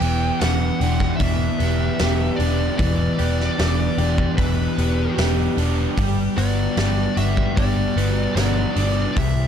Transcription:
Already playing: overdriven electric guitar E3, distorted electric guitar E3, clean electric guitar B3, lead electric guitar G5
0.00 picked electric bass E1, distorted electric guitar B3, overdriven electric guitar B3, clean electric guitar G4, open hi-hat
0.39 picked electric bass E1, overdriven electric guitar E3, distorted electric guitar B3, clean electric guitar D4, lead electric guitar F#5, snare, open hi-hat
0.80 picked electric bass E1, distorted electric guitar E3, overdriven electric guitar D4, clean electric guitar G4, open hi-hat
1.00 kick, snare
1.17 picked electric bass E1, clean electric guitar D4, lead electric guitar E5, kick, open hi-hat
1.21 overdriven electric guitar E3, distorted electric guitar B3
1.59 picked electric bass E1, clean electric guitar B3, overdriven electric guitar B3, distorted electric guitar G4, open hi-hat
1.98 picked electric bass E1, clean electric guitar B3, distorted electric guitar B3, overdriven electric guitar G4, snare, open hi-hat
2.36 picked electric bass E1, clean electric guitar D4, overdriven electric guitar D4, lead electric guitar D5, open hi-hat
2.40 distorted electric guitar D4
2.78 picked electric bass E1, overdriven electric guitar E3, distorted electric guitar E3, clean electric guitar B3, lead electric guitar D5, kick, open hi-hat
3.19 picked electric bass E1, overdriven electric guitar B3, distorted electric guitar B3, clean electric guitar G4, open hi-hat
3.40 snare
3.58 picked electric bass E1, overdriven electric guitar E3, distorted electric guitar B3, clean electric guitar D4, snare, open hi-hat
3.98 picked electric bass E1, distorted electric guitar E3, overdriven electric guitar D4, clean electric guitar G4, open hi-hat
4.18 kick
4.37 picked electric bass E1, overdriven electric guitar E3, distorted electric guitar B3, clean electric guitar D4, lead electric guitar B4, kick, open hi-hat
4.77 picked electric bass E1, overdriven electric guitar B3, clean electric guitar B3, distorted electric guitar G4, open hi-hat
5.16 picked electric bass E1, clean electric guitar B3, distorted electric guitar B3, overdriven electric guitar G4, snare, open hi-hat
5.57 picked electric bass E1, overdriven electric guitar D4, distorted electric guitar D4, clean electric guitar D4, open hi-hat
5.97 picked electric bass G1, overdriven electric guitar G3, distorted electric guitar G3, kick, open hi-hat
6.36 picked electric bass G1, overdriven electric guitar B3, distorted electric guitar B3, clean electric guitar F#4, lead electric guitar D5, open hi-hat
6.77 picked electric bass G1, overdriven electric guitar G3, distorted electric guitar B3, clean electric guitar D4, snare, open hi-hat
7.17 picked electric bass G1, distorted electric guitar G3, overdriven electric guitar D4, clean electric guitar F#4, lead electric guitar E5, open hi-hat
7.37 kick
7.56 picked electric bass G1, overdriven electric guitar G3, distorted electric guitar B3, clean electric guitar D4, lead electric guitar D5, kick, open hi-hat
7.96 picked electric bass G1, clean electric guitar B3, overdriven electric guitar B3, distorted electric guitar F#4, open hi-hat
8.35 picked electric bass G1, distorted electric guitar B3, overdriven electric guitar F#4, lead electric guitar D5, snare, open hi-hat
8.76 picked electric bass G1, overdriven electric guitar D4, clean electric guitar D4, distorted electric guitar D4, open hi-hat
9.16 picked electric bass C2, distorted electric guitar C3, overdriven electric guitar C3, clean electric guitar E3, lead electric guitar E5, kick, open hi-hat

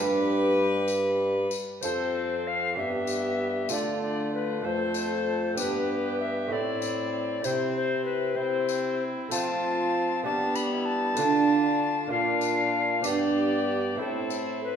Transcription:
Already playing: bassoon G2, lute G2 B3 D4 G4, viola G3, violin B4
0.00 recorder G4
0.88 tambourine
1.51 tambourine
1.81 bassoon F2, lute C4 F4 A4, viola C4, violin A4, recorder C5, tambourine
1.85 lute F2
2.47 recorder F5
2.75 bassoon G2, lute G2 B3 D4 G4, viola B3, violin G4, recorder E5
3.07 tambourine
3.69 bassoon D3, lute D3 A3 F4 A4, viola A3, violin F4, recorder D5, tambourine
4.02 recorder D5
4.34 recorder B4
4.62 bassoon F2, lute F2 A3 F4 A4, viola A3, violin A4
4.66 recorder C5
4.94 tambourine
5.55 bassoon G2, lute G2 B3 D4 G4, viola B3, violin G4, recorder B4, tambourine
6.20 recorder E5
6.48 lute A2 A3 C4 E4, violin E4
6.52 bassoon A2, viola C4, recorder D5
6.82 tambourine
7.42 bassoon C3, lute C3 C4 E4, viola C4, violin E4, recorder C5, tambourine
7.76 recorder C5
8.05 recorder B4
8.35 lute C4 E4, viola C4, violin E4, recorder C5
8.69 tambourine
9.29 bassoon F3, lute F3 A3 C4 F4, viola C4, violin F4, recorder A5, tambourine
10.23 bassoon G3, lute G3 B3 D4, viola B3, violin D4, recorder A5
10.55 recorder B5, tambourine
10.72 violin E4
10.85 recorder A5
11.15 bassoon D3, lute D3 A3 D4 F4, viola D4, tambourine
11.19 violin F4
12.07 lute A#3 D4 F4, violin F4
12.11 lute A#2, bassoon A#2, viola D4, recorder F5
12.41 tambourine
13.02 bassoon G2, lute G2 B3 D4 G4, viola B3, violin G4, recorder D5, tambourine
13.95 lute A2 A3 C4 E4
13.99 bassoon A2, viola C4, violin E4, recorder A4
14.30 tambourine
14.64 recorder B4

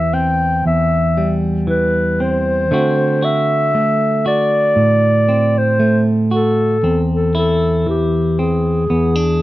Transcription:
Already playing: clean electric guitar E2 E3 C4 G4, clarinet E5
0.13 clean electric guitar C4, clarinet G5
0.66 clean electric guitar E2, clarinet E5
1.17 clean electric guitar G3
1.67 clean electric guitar E3, clarinet B4
2.20 clean electric guitar C4, clarinet C5
2.71 clean electric guitar D3 A3 C4 F#4
3.22 clean electric guitar F#4, clarinet E5
3.75 clean electric guitar A3
4.26 clean electric guitar F#4, clarinet D5
4.76 clean electric guitar A2
5.29 clean electric guitar C4
5.58 clarinet C5
5.80 clean electric guitar A3
6.31 clean electric guitar F#4, clarinet A4
6.83 clean electric guitar E2 C4
7.12 clarinet A4
7.35 clean electric guitar E4, clarinet A4
7.86 clean electric guitar E3, clarinet G4
8.39 clean electric guitar C4, clarinet G#4
8.90 clean electric guitar E2 B3
9.16 clean electric guitar D4

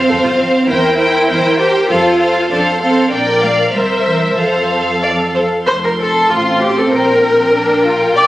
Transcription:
Already playing: cello section C4, violin section C5 F5
0.08 double bass section F2, viola section A4
0.23 double bass section F2, viola section F4
0.38 double bass section F2, viola section C4
0.68 double bass section E2, cello section E4, viola section A#4, violin section C5 G5
0.97 viola section A#4, violin section C5 G5
1.28 double bass section E2, viola section A#4, violin section C5 G5
1.59 cello section G4, viola section A#4, violin section C5 G5
1.89 double bass section F2, cello section F4, viola section A4, violin section C5 F5
2.19 viola section A4, violin section C5 F5
2.50 double bass section F2, cello section D4, viola section A4, violin section C5 F5
2.80 cello section C4, viola section A4, violin section C5 F5
3.10 double bass section A#1, cello section D4, viola section A#4, violin section D5 G5
3.41 cello section A#3, violin section F5
3.72 double bass section C2, cello section G3, viola section A#4, violin section C5 E5
4.05 cello section E3
4.37 double bass section F2, cello section F3, viola section A4, violin section C5 F5
5.03 violin section D5
5.35 violin section C5
5.66 double bass section F1, cello section F2, viola section C5, violin section C6
5.84 viola section A#4
5.99 viola section A4
6.29 double bass section A1, cello section A2, violin section C4, viola section F4
6.61 viola section G4
6.77 viola section A4
6.92 double bass section A#1, cello section A#2, viola section A#4, violin section G5
7.54 violin section D4
7.84 violin section F4
8.16 double bass section B1, cello section B2, violin section G4, viola section D5

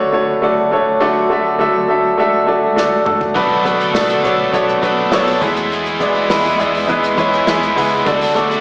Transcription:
Already playing: grand piano D3 A3 D4 F#4 A4 B4 C#5 D5, ambient pad D3 F#3 A3 F#4
0.12 grand piano A3 D4 F#4 A4 C#5
0.42 grand piano A3 D4 F#4 A4 D5
0.71 grand piano A3 D4 F#4 A4 C#5
1.00 grand piano D3 A3 D4 F#4 A4 D5, ambient pad G#3
1.30 grand piano A3 D4 F#4 A4 E5
1.59 grand piano A3 D4 F#4 A4 E5
1.89 grand piano A3 D4 F#4 A4 E5
2.18 grand piano A3 D4 F#4 A4 E5
2.46 grand piano A3 D4 F#4 A4 D5
2.76 grand piano A3 D4 F#4 A4 D5, snare
3.06 grand piano A3 D4 F#4 A4 D5, mid tom
3.21 floor tom
3.35 fingered electric bass B1, overdriven electric guitar B2 F#3 A3 D4 A4, grand piano B2 B3 D4 F#4 A4 B4, ambient pad A3 B3, kick, open hi-hat
3.51 open hi-hat
3.64 grand piano B3 D4 F#4 A4 B4, kick, hi-hat pedal, open hi-hat
3.79 overdriven electric guitar A3 D4 A4, hi-hat pedal, open hi-hat
3.93 fingered electric bass B1, grand piano B3 D4 F#4 A4 D5, snare, hi-hat pedal, open hi-hat
4.08 overdriven electric guitar A3 D4 A4, hi-hat pedal
4.23 fingered electric bass B1, grand piano B3 D4 F#4 A4 C#5, hi-hat pedal, open hi-hat
4.39 open hi-hat
4.52 fingered electric bass B1, grand piano B3 D4 F#4 A4 C#5, kick, hi-hat pedal, open hi-hat
4.69 hi-hat pedal
4.81 fingered electric bass B1, overdriven electric guitar F#3 A3 D4, grand piano B3 D4 F#4 A4 B4, kick, hi-hat pedal, open hi-hat
4.85 overdriven electric guitar A4
4.97 open hi-hat
5.11 fingered electric bass B1, overdriven electric guitar F#3 A3 D4 A4, grand piano B3 D4 F#4 A4 C#5, snare, hi-hat pedal, open hi-hat
5.27 hi-hat pedal, open hi-hat
5.41 fingered electric bass E2, overdriven electric guitar E3 B3 E4 G#4, ambient pad E3 G#3 G#4, grand piano E3 G#3 B3 E4 G#4 B4, kick, hi-hat pedal, open hi-hat
5.56 hi-hat pedal, open hi-hat
5.70 overdriven electric guitar E3 B3 E4 G#4, hi-hat pedal, open hi-hat
5.86 hi-hat pedal
6.00 grand piano G#3 B3 E4 G#4 D5, kick, hi-hat pedal, open hi-hat
6.14 overdriven electric guitar B3 E4 G#4, open hi-hat
6.29 fingered electric bass E2, grand piano G#3 B3 E4 G#4 B4, snare, hi-hat pedal, open hi-hat
6.44 overdriven electric guitar B3 E4 G#4, hi-hat pedal, open hi-hat
6.58 fingered electric bass E2, grand piano G#3 B3 E4 G#4 D5, hi-hat pedal, open hi-hat
6.74 hi-hat pedal, open hi-hat
6.87 fingered electric bass E2, grand piano G#3 B3 E4 G#4 B4, kick, hi-hat pedal, open hi-hat
7.03 hi-hat pedal, open hi-hat
7.17 fingered electric bass E2, overdriven electric guitar E3 B3 E4 G#4, grand piano G#3 B3 E4 G#4 C#5 B5, kick, hi-hat pedal, open hi-hat
7.33 hi-hat pedal, open hi-hat
7.47 fingered electric bass E2, overdriven electric guitar E3 B3 E4 G#4, grand piano G#3 B3 E4 G#4 B4 G#5, snare, hi-hat pedal, open hi-hat
7.62 hi-hat pedal
7.76 fingered electric bass C#2, overdriven electric guitar E3 B3 E4 G#4, grand piano G#3 B3 E4 G#4 B4 F#5, hi-hat pedal, open hi-hat
7.91 open hi-hat
8.06 fingered electric bass D2, overdriven electric guitar D3 F#3 A3 D4 F#4, ambient pad D3 F#3 A3 F#4, grand piano D3 A3 D4 F#4 A4 D5, kick, hi-hat pedal, open hi-hat
8.21 hi-hat pedal, open hi-hat
8.35 grand piano A3 D4 F#4 A4 D5, kick, hi-hat pedal, open hi-hat
8.49 overdriven electric guitar A3 D4 F#4, hi-hat pedal, open hi-hat

